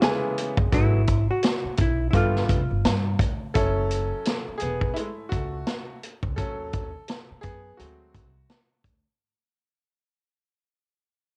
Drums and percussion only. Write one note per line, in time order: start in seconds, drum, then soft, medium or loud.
0.02 snare loud
0.02 closed hi-hat medium
0.38 closed hi-hat medium
0.57 kick loud
0.72 kick loud
0.72 closed hi-hat loud
1.07 kick medium
1.07 closed hi-hat medium
1.43 snare loud
1.43 closed hi-hat medium
1.77 kick medium
1.77 closed hi-hat medium
2.13 kick medium
2.13 closed hi-hat medium
2.36 snare soft
2.49 kick medium
2.49 closed hi-hat medium
2.85 snare loud
2.85 closed hi-hat medium
3.19 kick loud
3.19 closed hi-hat medium
3.55 kick loud
3.55 closed hi-hat medium
3.91 closed hi-hat medium
4.25 snare medium
4.25 closed hi-hat medium
4.60 closed hi-hat medium
4.81 kick medium
4.96 closed hi-hat medium
5.32 kick medium
5.32 closed hi-hat medium
5.67 snare medium
5.67 closed hi-hat medium
6.03 closed hi-hat medium
6.23 kick medium
6.38 kick medium
6.38 closed hi-hat medium
6.73 kick medium
6.73 closed hi-hat medium
7.08 snare loud
7.08 closed hi-hat medium
7.43 kick medium
7.43 closed hi-hat medium
7.79 closed hi-hat medium
8.15 kick medium
8.15 closed hi-hat medium
8.50 snare medium
8.50 closed hi-hat medium
8.84 kick medium
8.84 closed hi-hat medium